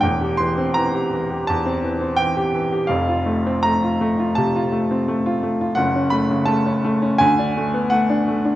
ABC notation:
X:1
M:4/4
L:1/16
Q:1/4=84
K:Cmix
V:1 name="Grand piano"
g2 c'2 b4 a4 g4 | f4 b4 a6 z2 | [K:F#m] f2 b2 a4 g4 f4 |]
V:2 name="Grand piano"
[E,,,E,,] G E, C E, G E, G E,, C E, C E, G E, G | [F,,,F,,] F A, C A, F A, F C, F A, C A, F A, F | [K:F#m] [F,,,F,,] C A, C, A, C A, C D,, D A, B, A, D A, D |]